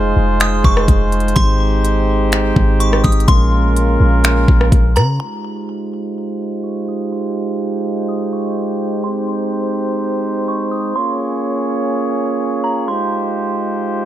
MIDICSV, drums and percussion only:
0, 0, Header, 1, 2, 480
1, 0, Start_track
1, 0, Key_signature, -4, "minor"
1, 0, Tempo, 480000
1, 1364, Time_signature, 4, 2, 24, 8
1, 14051, End_track
2, 0, Start_track
2, 0, Title_t, "Drums"
2, 401, Note_on_c, 9, 42, 72
2, 408, Note_on_c, 9, 26, 102
2, 501, Note_off_c, 9, 42, 0
2, 508, Note_off_c, 9, 26, 0
2, 644, Note_on_c, 9, 36, 99
2, 744, Note_off_c, 9, 36, 0
2, 769, Note_on_c, 9, 37, 87
2, 869, Note_off_c, 9, 37, 0
2, 882, Note_on_c, 9, 36, 104
2, 884, Note_on_c, 9, 42, 80
2, 982, Note_off_c, 9, 36, 0
2, 984, Note_off_c, 9, 42, 0
2, 1123, Note_on_c, 9, 42, 55
2, 1203, Note_off_c, 9, 42, 0
2, 1203, Note_on_c, 9, 42, 53
2, 1283, Note_off_c, 9, 42, 0
2, 1283, Note_on_c, 9, 42, 58
2, 1362, Note_off_c, 9, 42, 0
2, 1362, Note_on_c, 9, 42, 72
2, 1364, Note_on_c, 9, 36, 122
2, 1462, Note_off_c, 9, 42, 0
2, 1464, Note_off_c, 9, 36, 0
2, 1845, Note_on_c, 9, 42, 78
2, 1945, Note_off_c, 9, 42, 0
2, 2321, Note_on_c, 9, 42, 71
2, 2328, Note_on_c, 9, 26, 101
2, 2421, Note_off_c, 9, 42, 0
2, 2428, Note_off_c, 9, 26, 0
2, 2564, Note_on_c, 9, 36, 97
2, 2664, Note_off_c, 9, 36, 0
2, 2803, Note_on_c, 9, 42, 80
2, 2903, Note_off_c, 9, 42, 0
2, 2930, Note_on_c, 9, 37, 91
2, 3030, Note_off_c, 9, 37, 0
2, 3042, Note_on_c, 9, 42, 55
2, 3044, Note_on_c, 9, 36, 90
2, 3122, Note_off_c, 9, 42, 0
2, 3122, Note_on_c, 9, 42, 57
2, 3145, Note_off_c, 9, 36, 0
2, 3202, Note_off_c, 9, 42, 0
2, 3202, Note_on_c, 9, 42, 57
2, 3282, Note_off_c, 9, 42, 0
2, 3282, Note_on_c, 9, 42, 75
2, 3283, Note_on_c, 9, 36, 123
2, 3383, Note_off_c, 9, 36, 0
2, 3383, Note_off_c, 9, 42, 0
2, 3765, Note_on_c, 9, 42, 76
2, 3865, Note_off_c, 9, 42, 0
2, 4240, Note_on_c, 9, 42, 74
2, 4247, Note_on_c, 9, 26, 106
2, 4340, Note_off_c, 9, 42, 0
2, 4347, Note_off_c, 9, 26, 0
2, 4483, Note_on_c, 9, 36, 101
2, 4583, Note_off_c, 9, 36, 0
2, 4609, Note_on_c, 9, 37, 89
2, 4709, Note_off_c, 9, 37, 0
2, 4722, Note_on_c, 9, 36, 103
2, 4723, Note_on_c, 9, 42, 84
2, 4822, Note_off_c, 9, 36, 0
2, 4823, Note_off_c, 9, 42, 0
2, 4964, Note_on_c, 9, 42, 65
2, 4968, Note_on_c, 9, 37, 91
2, 5064, Note_off_c, 9, 42, 0
2, 5068, Note_off_c, 9, 37, 0
2, 14051, End_track
0, 0, End_of_file